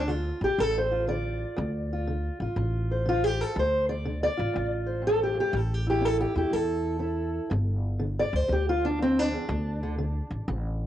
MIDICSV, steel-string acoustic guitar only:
0, 0, Header, 1, 2, 480
1, 0, Start_track
1, 0, Key_signature, -1, "minor"
1, 0, Tempo, 495050
1, 1529, Time_signature, 4, 2, 24, 8
1, 10536, End_track
2, 0, Start_track
2, 0, Title_t, "Steel-string acoustic guitar"
2, 0, Program_c, 0, 25
2, 74, Note_on_c, 0, 50, 64
2, 77, Note_on_c, 0, 65, 98
2, 402, Note_off_c, 0, 65, 0
2, 427, Note_on_c, 0, 67, 92
2, 530, Note_off_c, 0, 50, 0
2, 563, Note_on_c, 0, 45, 65
2, 584, Note_off_c, 0, 67, 0
2, 584, Note_on_c, 0, 69, 96
2, 736, Note_off_c, 0, 69, 0
2, 756, Note_on_c, 0, 72, 84
2, 886, Note_on_c, 0, 65, 46
2, 1014, Note_off_c, 0, 45, 0
2, 1041, Note_on_c, 0, 50, 60
2, 1048, Note_off_c, 0, 72, 0
2, 1052, Note_on_c, 0, 74, 94
2, 1493, Note_off_c, 0, 50, 0
2, 1517, Note_on_c, 0, 38, 87
2, 1865, Note_off_c, 0, 65, 0
2, 1869, Note_on_c, 0, 65, 49
2, 1971, Note_off_c, 0, 38, 0
2, 2011, Note_off_c, 0, 74, 0
2, 2011, Note_on_c, 0, 50, 72
2, 2341, Note_off_c, 0, 65, 0
2, 2345, Note_on_c, 0, 65, 50
2, 2458, Note_off_c, 0, 50, 0
2, 2489, Note_on_c, 0, 45, 71
2, 2826, Note_on_c, 0, 72, 47
2, 2937, Note_off_c, 0, 45, 0
2, 2964, Note_on_c, 0, 50, 64
2, 2979, Note_off_c, 0, 65, 0
2, 2994, Note_on_c, 0, 65, 103
2, 3141, Note_off_c, 0, 65, 0
2, 3141, Note_on_c, 0, 67, 93
2, 3306, Note_off_c, 0, 67, 0
2, 3306, Note_on_c, 0, 69, 112
2, 3415, Note_off_c, 0, 50, 0
2, 3439, Note_off_c, 0, 72, 0
2, 3443, Note_on_c, 0, 38, 81
2, 3458, Note_off_c, 0, 69, 0
2, 3483, Note_on_c, 0, 72, 100
2, 3769, Note_off_c, 0, 72, 0
2, 3773, Note_on_c, 0, 74, 91
2, 3894, Note_off_c, 0, 38, 0
2, 3931, Note_on_c, 0, 50, 72
2, 4092, Note_off_c, 0, 74, 0
2, 4103, Note_on_c, 0, 74, 125
2, 4240, Note_on_c, 0, 65, 55
2, 4378, Note_off_c, 0, 50, 0
2, 4396, Note_on_c, 0, 45, 67
2, 4577, Note_off_c, 0, 74, 0
2, 4715, Note_on_c, 0, 72, 45
2, 4851, Note_off_c, 0, 45, 0
2, 4863, Note_on_c, 0, 41, 56
2, 4886, Note_off_c, 0, 65, 0
2, 4914, Note_on_c, 0, 69, 117
2, 5062, Note_off_c, 0, 69, 0
2, 5072, Note_on_c, 0, 67, 95
2, 5174, Note_off_c, 0, 41, 0
2, 5178, Note_on_c, 0, 43, 60
2, 5221, Note_off_c, 0, 67, 0
2, 5236, Note_on_c, 0, 67, 102
2, 5341, Note_on_c, 0, 45, 79
2, 5344, Note_off_c, 0, 72, 0
2, 5355, Note_off_c, 0, 43, 0
2, 5383, Note_off_c, 0, 67, 0
2, 5396, Note_on_c, 0, 69, 97
2, 5565, Note_off_c, 0, 69, 0
2, 5565, Note_on_c, 0, 67, 79
2, 5690, Note_on_c, 0, 64, 55
2, 5707, Note_off_c, 0, 67, 0
2, 5720, Note_on_c, 0, 67, 104
2, 5803, Note_off_c, 0, 45, 0
2, 5827, Note_on_c, 0, 61, 69
2, 5869, Note_off_c, 0, 67, 0
2, 5869, Note_on_c, 0, 69, 101
2, 6014, Note_off_c, 0, 69, 0
2, 6017, Note_on_c, 0, 67, 99
2, 6155, Note_off_c, 0, 64, 0
2, 6167, Note_on_c, 0, 64, 53
2, 6171, Note_off_c, 0, 67, 0
2, 6182, Note_on_c, 0, 67, 86
2, 6286, Note_off_c, 0, 61, 0
2, 6303, Note_on_c, 0, 45, 74
2, 6333, Note_off_c, 0, 67, 0
2, 6333, Note_on_c, 0, 69, 99
2, 6764, Note_off_c, 0, 45, 0
2, 6775, Note_off_c, 0, 64, 0
2, 6781, Note_on_c, 0, 61, 59
2, 6787, Note_on_c, 0, 64, 44
2, 7243, Note_off_c, 0, 61, 0
2, 7259, Note_off_c, 0, 64, 0
2, 7271, Note_on_c, 0, 43, 82
2, 7291, Note_off_c, 0, 69, 0
2, 7727, Note_off_c, 0, 43, 0
2, 7752, Note_on_c, 0, 50, 72
2, 7945, Note_on_c, 0, 74, 117
2, 8103, Note_off_c, 0, 74, 0
2, 8103, Note_on_c, 0, 72, 98
2, 8208, Note_off_c, 0, 50, 0
2, 8224, Note_on_c, 0, 50, 71
2, 8256, Note_off_c, 0, 72, 0
2, 8265, Note_on_c, 0, 67, 100
2, 8417, Note_off_c, 0, 67, 0
2, 8427, Note_on_c, 0, 65, 97
2, 8578, Note_off_c, 0, 65, 0
2, 8578, Note_on_c, 0, 62, 97
2, 8684, Note_off_c, 0, 50, 0
2, 8714, Note_on_c, 0, 41, 56
2, 8733, Note_off_c, 0, 62, 0
2, 8749, Note_on_c, 0, 60, 110
2, 8910, Note_off_c, 0, 60, 0
2, 8910, Note_on_c, 0, 62, 118
2, 9030, Note_off_c, 0, 41, 0
2, 9033, Note_on_c, 0, 40, 59
2, 9197, Note_off_c, 0, 40, 0
2, 9201, Note_on_c, 0, 38, 94
2, 9532, Note_on_c, 0, 50, 56
2, 9651, Note_off_c, 0, 38, 0
2, 9670, Note_off_c, 0, 50, 0
2, 9682, Note_on_c, 0, 50, 76
2, 10132, Note_off_c, 0, 50, 0
2, 10164, Note_on_c, 0, 45, 71
2, 10337, Note_off_c, 0, 62, 0
2, 10536, Note_off_c, 0, 45, 0
2, 10536, End_track
0, 0, End_of_file